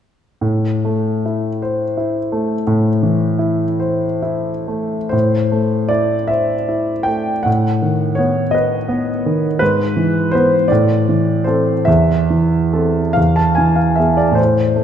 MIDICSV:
0, 0, Header, 1, 2, 480
1, 0, Start_track
1, 0, Key_signature, 0, "minor"
1, 0, Tempo, 834492
1, 235, Time_signature, 12, 3, 24, 8
1, 709, Tempo, 724638
1, 2149, Tempo, 818554
1, 2629, Tempo, 906344
1, 3109, Tempo, 778210
1, 4549, Tempo, 720288
1, 6949, Tempo, 800000
1, 7429, Tempo, 851064
1, 8389, Tempo, 793651
1, 9157, End_track
2, 0, Start_track
2, 0, Title_t, "Grand piano"
2, 0, Program_c, 0, 0
2, 238, Note_on_c, 0, 45, 44
2, 363, Control_c, 0, 64, 127
2, 487, Note_on_c, 0, 57, 33
2, 724, Note_on_c, 0, 64, 38
2, 864, Note_off_c, 0, 57, 0
2, 968, Note_on_c, 0, 72, 38
2, 1105, Note_off_c, 0, 64, 0
2, 1200, Note_on_c, 0, 64, 36
2, 1337, Note_off_c, 0, 72, 0
2, 1430, Note_on_c, 0, 57, 39
2, 1570, Note_off_c, 0, 64, 0
2, 1635, Note_off_c, 0, 45, 0
2, 1661, Note_on_c, 0, 45, 47
2, 1806, Note_off_c, 0, 57, 0
2, 1898, Note_on_c, 0, 52, 40
2, 2138, Note_on_c, 0, 64, 43
2, 2285, Note_off_c, 0, 52, 0
2, 2378, Note_on_c, 0, 72, 42
2, 2522, Note_off_c, 0, 64, 0
2, 2629, Note_on_c, 0, 64, 42
2, 2771, Note_off_c, 0, 72, 0
2, 2869, Note_on_c, 0, 57, 30
2, 3020, Note_off_c, 0, 64, 0
2, 3088, Note_off_c, 0, 45, 0
2, 3089, Note_on_c, 0, 72, 53
2, 3106, Note_on_c, 0, 45, 42
2, 3107, Note_off_c, 0, 57, 0
2, 3121, Control_c, 0, 64, 0
2, 3230, Control_c, 0, 64, 127
2, 3346, Note_on_c, 0, 57, 29
2, 3574, Note_on_c, 0, 74, 62
2, 3584, Note_off_c, 0, 72, 0
2, 3587, Note_on_c, 0, 64, 36
2, 3732, Note_off_c, 0, 57, 0
2, 3814, Note_on_c, 0, 76, 58
2, 3820, Note_off_c, 0, 74, 0
2, 3829, Note_on_c, 0, 72, 37
2, 3968, Note_off_c, 0, 64, 0
2, 4068, Note_on_c, 0, 64, 36
2, 4211, Note_off_c, 0, 72, 0
2, 4282, Note_on_c, 0, 79, 60
2, 4301, Note_off_c, 0, 76, 0
2, 4305, Note_on_c, 0, 57, 31
2, 4455, Note_off_c, 0, 64, 0
2, 4523, Note_off_c, 0, 45, 0
2, 4526, Note_on_c, 0, 78, 57
2, 4536, Note_off_c, 0, 79, 0
2, 4544, Note_on_c, 0, 45, 43
2, 4547, Note_off_c, 0, 57, 0
2, 4563, Control_c, 0, 64, 0
2, 4672, Control_c, 0, 64, 127
2, 4786, Note_on_c, 0, 51, 31
2, 5006, Note_on_c, 0, 73, 59
2, 5025, Note_off_c, 0, 78, 0
2, 5028, Note_on_c, 0, 59, 37
2, 5175, Note_off_c, 0, 51, 0
2, 5245, Note_on_c, 0, 75, 58
2, 5258, Note_off_c, 0, 73, 0
2, 5268, Note_on_c, 0, 71, 43
2, 5408, Note_off_c, 0, 59, 0
2, 5494, Note_on_c, 0, 59, 42
2, 5640, Note_off_c, 0, 71, 0
2, 5745, Note_on_c, 0, 51, 34
2, 5874, Note_off_c, 0, 59, 0
2, 5945, Note_off_c, 0, 45, 0
2, 5960, Note_off_c, 0, 75, 0
2, 5966, Note_on_c, 0, 71, 71
2, 5979, Note_off_c, 0, 51, 0
2, 5980, Note_on_c, 0, 44, 48
2, 5987, Control_c, 0, 64, 0
2, 6097, Control_c, 0, 64, 127
2, 6215, Note_on_c, 0, 52, 35
2, 6448, Note_on_c, 0, 72, 71
2, 6452, Note_off_c, 0, 71, 0
2, 6469, Note_on_c, 0, 59, 38
2, 6471, Note_on_c, 0, 71, 48
2, 6602, Note_off_c, 0, 52, 0
2, 6681, Note_off_c, 0, 44, 0
2, 6683, Note_off_c, 0, 59, 0
2, 6684, Note_off_c, 0, 71, 0
2, 6691, Note_on_c, 0, 74, 59
2, 6696, Note_off_c, 0, 72, 0
2, 6712, Control_c, 0, 64, 0
2, 6715, Note_on_c, 0, 45, 49
2, 6813, Control_c, 0, 64, 127
2, 6961, Note_on_c, 0, 52, 38
2, 7174, Note_on_c, 0, 72, 57
2, 7180, Note_off_c, 0, 74, 0
2, 7192, Note_on_c, 0, 69, 35
2, 7195, Note_on_c, 0, 60, 37
2, 7336, Note_off_c, 0, 52, 0
2, 7410, Note_off_c, 0, 69, 0
2, 7411, Note_off_c, 0, 60, 0
2, 7416, Note_off_c, 0, 45, 0
2, 7418, Note_on_c, 0, 76, 69
2, 7425, Note_off_c, 0, 72, 0
2, 7434, Note_on_c, 0, 40, 49
2, 7440, Control_c, 0, 64, 0
2, 7556, Control_c, 0, 64, 127
2, 7675, Note_on_c, 0, 52, 32
2, 7915, Note_on_c, 0, 60, 33
2, 7917, Note_on_c, 0, 69, 38
2, 8067, Note_off_c, 0, 52, 0
2, 8136, Note_off_c, 0, 60, 0
2, 8137, Note_off_c, 0, 69, 0
2, 8141, Note_off_c, 0, 40, 0
2, 8141, Note_on_c, 0, 77, 61
2, 8155, Note_off_c, 0, 76, 0
2, 8164, Note_on_c, 0, 40, 44
2, 8173, Control_c, 0, 64, 0
2, 8267, Note_off_c, 0, 77, 0
2, 8270, Note_on_c, 0, 81, 61
2, 8274, Control_c, 0, 64, 127
2, 8378, Note_on_c, 0, 80, 58
2, 8387, Note_off_c, 0, 81, 0
2, 8395, Note_on_c, 0, 52, 34
2, 8502, Note_on_c, 0, 77, 44
2, 8505, Note_off_c, 0, 80, 0
2, 8623, Note_on_c, 0, 76, 50
2, 8630, Note_off_c, 0, 77, 0
2, 8643, Note_on_c, 0, 59, 27
2, 8647, Note_on_c, 0, 68, 29
2, 8752, Note_off_c, 0, 76, 0
2, 8753, Note_on_c, 0, 74, 54
2, 8784, Note_off_c, 0, 52, 0
2, 8840, Note_on_c, 0, 45, 40
2, 8857, Note_off_c, 0, 40, 0
2, 8857, Note_off_c, 0, 59, 0
2, 8859, Note_off_c, 0, 68, 0
2, 8860, Note_on_c, 0, 72, 56
2, 8875, Note_off_c, 0, 74, 0
2, 8889, Control_c, 0, 64, 0
2, 8984, Control_c, 0, 64, 127
2, 9109, Note_on_c, 0, 57, 33
2, 9157, Note_off_c, 0, 45, 0
2, 9157, Note_off_c, 0, 57, 0
2, 9157, Note_off_c, 0, 72, 0
2, 9157, End_track
0, 0, End_of_file